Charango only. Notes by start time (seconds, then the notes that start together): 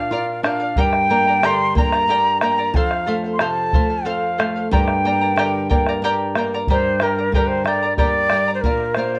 Already playing: D5 F5
0.12 A#4 D5 F5
0.45 A#4 D5 F5
0.60 D5 F5
0.78 G4 A#4 D5 G5 A#5
1.10 A#4 D5 G5 A#5
1.27 A#4 D5 A#5
1.43 G4 A#4 D5 G5 A#5
1.76 A#4 D5 G5 A#5
1.93 A#4 D5 A#5
2.09 G4 A#4 D5 G5 A#5
2.42 A#4 D5 G5 A#5
2.58 A#4 D5 A#5
2.76 A4 C5 F5
3.06 A4 C5 F5
3.24 C5 F5
3.41 A4 C5 F5
3.73 A4 C5 F5
3.90 C5 F5
4.05 A4 C5 F5
4.38 A4 C5 F5
4.56 C5 F5
4.72 G4 A#4 D5 G5 A#5
5.05 A#4 D5 G5 A#5
5.21 A#4 D5 A#5
5.38 G4 A#4 D5 G5 A#5
5.70 A#4 D5 G5 A#5
5.89 A#4 D5 A#5
6.04 G4 A#4 D5 G5 A#5
6.37 A#4 D5 G5 A#5
6.54 A#4 D5 A#5
6.70 G4 A#4 D5 G5 A#5
7.02 A#4 D5 G5 A#5
7.18 A#4 D5 A#5
7.34 G4 A#4 D5 G5 A#5
7.67 A#4 D5 G5 A#5
7.82 A#4 D5 A#5
7.98 G4 A#4 D5 G5 A#5
8.32 A#4 D5 G5 A#5
8.48 A#4 D5 A#5
8.65 A#4 D5 F5
8.97 A#4 D5 F5
9.15 D5 F5